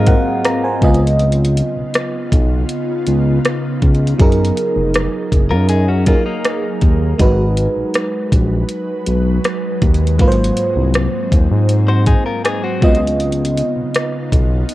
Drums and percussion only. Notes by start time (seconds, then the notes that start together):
0.07 kick, closed hi-hat
0.45 cross-stick, closed hi-hat
0.82 kick, closed hi-hat
0.95 closed hi-hat
1.07 closed hi-hat
1.20 closed hi-hat
1.32 closed hi-hat
1.45 closed hi-hat
1.57 closed hi-hat
1.94 cross-stick, closed hi-hat
2.32 kick, closed hi-hat
2.69 closed hi-hat
3.07 closed hi-hat
3.45 cross-stick, closed hi-hat
3.82 kick, closed hi-hat
3.94 closed hi-hat
4.07 closed hi-hat
4.19 kick, closed hi-hat
4.32 closed hi-hat
4.45 closed hi-hat
4.57 closed hi-hat
4.94 cross-stick, closed hi-hat
5.32 kick, closed hi-hat
5.69 closed hi-hat
6.06 kick, closed hi-hat
6.45 cross-stick, closed hi-hat
6.81 kick, closed hi-hat
7.19 kick, closed hi-hat
7.57 closed hi-hat
7.94 cross-stick, closed hi-hat
8.32 kick, closed hi-hat
8.69 closed hi-hat
9.06 closed hi-hat
9.45 cross-stick, closed hi-hat
9.82 kick, closed hi-hat
9.94 closed hi-hat
10.07 closed hi-hat
10.19 kick, closed hi-hat
10.32 closed hi-hat
10.44 closed hi-hat
10.57 closed hi-hat
10.94 cross-stick, closed hi-hat
11.32 kick, closed hi-hat
11.69 closed hi-hat
12.06 kick, closed hi-hat
12.45 cross-stick, closed hi-hat
12.82 kick, closed hi-hat
12.95 closed hi-hat
13.07 closed hi-hat
13.20 closed hi-hat
13.32 closed hi-hat
13.45 closed hi-hat
13.57 closed hi-hat
13.94 cross-stick, closed hi-hat
14.32 kick, closed hi-hat
14.69 closed hi-hat